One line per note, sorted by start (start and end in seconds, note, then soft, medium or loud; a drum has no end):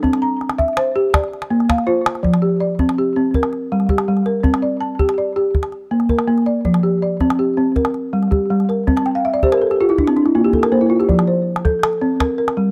0.00 0.40 C4 medium
0.00 0.22 A4 medium
0.04 calabash thump medium
0.13 calabash click soft
0.22 0.77 A#5 medium
0.41 calabash click soft
0.49 calabash click soft
0.58 1.14 E5 medium
0.58 calabash thump medium
0.58 calabash click soft
0.68 calabash click soft
0.77 1.32 C5 medium
0.77 calabash click medium
0.96 1.14 G4 medium
1.14 1.69 D5 medium
1.14 calabash thump medium
1.14 calabash click medium
1.24 calabash click soft
1.33 calabash click soft
1.42 calabash click soft
1.50 1.87 A#3 medium
1.60 calabash click soft
1.69 2.24 F5 medium
1.69 calabash thump medium
1.69 calabash click medium
1.78 calabash click soft
1.87 2.24 F4 medium
1.87 2.42 C5 medium
2.06 calabash click medium
2.15 calabash click soft
2.23 2.60 F3 medium
2.23 calabash thump medium
2.34 calabash click soft
2.42 2.97 G4 medium
2.60 3.16 D5 medium
2.79 3.15 C4 medium
2.79 calabash thump medium
2.89 calabash click soft
2.98 3.53 G4 medium
3.16 3.35 C4 medium
3.34 3.90 A#4 medium
3.34 calabash thump medium
3.43 calabash click soft
3.53 calabash click soft
3.72 4.07 G3 medium
3.80 calabash click soft
3.89 4.45 G4 medium
3.89 calabash thump medium
3.98 calabash click soft
4.08 4.45 G3 medium
4.17 calabash click soft
4.26 4.63 A#4 medium
4.26 calabash click soft
4.43 4.81 C4 medium
4.43 calabash thump medium
4.54 calabash click soft
4.62 5.17 D5 medium
4.81 5.36 A5 medium
4.99 5.35 G4 medium
4.99 calabash thump medium
5.09 calabash click soft
5.18 5.73 D5 medium
5.36 5.55 G4 medium
5.55 calabash thump medium
5.63 calabash click soft
5.72 calabash click soft
5.91 6.26 A#3 medium
6.00 calabash click soft
6.09 6.65 A#4 medium
6.09 calabash thump medium
6.19 calabash click soft
6.28 6.65 A#3 medium
6.38 calabash click soft
6.46 6.84 D5 medium
6.46 calabash click soft
6.65 7.02 F3 medium
6.65 calabash thump medium
6.74 calabash click soft
6.83 7.38 G4 medium
7.02 7.58 D5 medium
7.20 7.56 C4 medium
7.20 calabash thump medium
7.30 calabash click soft
7.39 7.95 G4 medium
7.57 7.76 C4 medium
7.76 8.32 A#4 medium
7.76 calabash thump medium
7.85 calabash click soft
7.94 calabash click soft
8.13 8.49 G3 medium
8.23 calabash click soft
8.31 8.87 G4 medium
8.31 calabash thump medium
8.50 8.87 G3 medium
8.60 calabash click soft
8.69 9.06 A#4 medium
8.69 calabash click soft
8.87 9.24 C4 medium
8.87 calabash thump medium
8.97 9.14 A5 medium
8.97 calabash click soft
9.06 9.23 G5 medium
9.06 calabash click soft
9.15 9.32 F5 medium
9.25 9.42 E5 medium
9.34 9.51 D5 medium
9.43 9.70 G4 medium
9.43 9.61 C5 medium
9.43 calabash thump medium
9.52 9.69 A#4 medium
9.52 calabash click soft
9.62 9.79 A4 medium
9.71 9.79 G4 medium
9.71 calabash click soft
9.80 9.98 F4 medium
9.80 9.99 G4 medium
9.89 10.07 E4 medium
9.89 calabash click soft
9.98 10.15 D4 medium
9.98 calabash thump medium
10.07 10.25 C4 medium
10.07 calabash click soft
10.16 10.34 D4 medium
10.16 calabash click soft
10.26 10.43 E4 medium
10.26 calabash click soft
10.35 10.71 A#3 medium
10.35 10.52 F4 medium
10.45 10.62 G4 medium
10.53 10.71 A4 medium
10.53 calabash thump medium
10.63 10.80 A#4 medium
10.63 calabash click soft
10.72 11.09 A#3 medium
10.72 10.90 C5 medium
10.81 10.99 E4 medium
10.90 11.08 F4 medium
11.00 11.17 G4 medium
11.00 calabash click soft
11.09 11.46 F3 medium
11.09 calabash thump medium
11.19 calabash click soft
11.27 11.83 C5 medium
11.56 calabash click soft
11.65 11.82 A4 medium
11.65 calabash thump medium
11.83 12.39 A4 medium
11.83 calabash click medium
11.93 calabash click soft
12.01 12.20 C4 medium
12.20 12.37 A#4 medium
12.20 calabash thump medium
12.20 calabash click medium
12.38 12.71 A#4 medium
12.48 calabash click soft
12.57 12.71 G3 medium